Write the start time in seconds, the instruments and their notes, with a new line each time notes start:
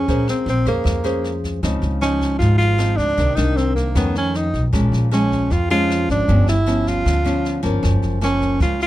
Already playing: tenor saxophone C#4
0.08 upright bass A#1, nylon-string guitar A#3 C#4 G#4 C5, kick, snare
0.28 tenor saxophone C4, cross-stick, snare
0.46 upright bass A#1, tenor saxophone C4, snare
0.66 upright bass F2, tenor saxophone A#3, nylon-string guitar C#4 G#4 C5, kick, snare
0.84 upright bass F2, nylon-string guitar F3, kick, cross-stick, snare
1.04 nylon-string guitar C#4 G#4 C5, snare
1.24 snare
1.44 kick, snare
1.63 upright bass C#2, nylon-string guitar C#3 F3 C4 D#4, kick, cross-stick, snare
1.82 upright bass C#2, snare
2.01 nylon-string guitar F3 D#4, tenor saxophone C#4, cross-stick, snare
2.21 kick, snare
2.39 upright bass G#1, nylon-string guitar G#2, tenor saxophone F4, kick, snare
2.58 tenor saxophone F4, snare
2.78 nylon-string guitar F3 C4 D#4, cross-stick, snare
2.97 upright bass C#2, tenor saxophone D4, kick, snare
3.17 upright bass C2, nylon-string guitar C3 D#3 A#3 D4, kick, snare
3.35 upright bass C2, nylon-string guitar D#3 A#3 D4, tenor saxophone D#4, cross-stick, snare
3.56 tenor saxophone C4, snare
3.76 tenor saxophone A#3, kick, snare
3.95 nylon-string guitar F2 D#3 A3 C#4, upright bass F2, tenor saxophone B3, kick, cross-stick, snare
4.15 tenor saxophone C#4, snare
4.34 tenor saxophone D#4, snare
4.54 upright bass B1, kick, snare
4.73 upright bass A#1, nylon-string guitar A#2 F3 G#3 C#4, kick, cross-stick, snare
4.92 upright bass A#1, snare
5.11 nylon-string guitar F3 G#3 C#4, tenor saxophone C#4, cross-stick, snare
5.31 kick, snare
5.50 nylon-string guitar F2, upright bass F2, tenor saxophone F4, kick, snare
5.70 nylon-string guitar F3 G#3 C#4, tenor saxophone F4, snare
5.90 cross-stick, snare
6.09 upright bass G#1, tenor saxophone D4, kick, snare
6.28 upright bass G1, nylon-string guitar G2 F3 B3 C#4, kick, snare
6.47 upright bass G1, tenor saxophone E4, cross-stick, snare
6.66 nylon-string guitar F3 B3 C#4, snare
6.86 tenor saxophone F4, kick, snare
7.05 upright bass D2, nylon-string guitar D3, kick, cross-stick, snare
7.25 nylon-string guitar F3 B3 C#4, snare
7.45 snare
7.63 upright bass G1, nylon-string guitar F3 A#3 C#4, kick, snare
7.83 upright bass F#1, nylon-string guitar F#2, kick, cross-stick, snare
8.02 upright bass F#1, snare
8.21 nylon-string guitar F3 A#3 C#4, tenor saxophone C#4, cross-stick, snare
8.41 kick, snare
8.60 upright bass C#2, nylon-string guitar C#3, tenor saxophone F4, kick, snare
8.81 tenor saxophone F4, snare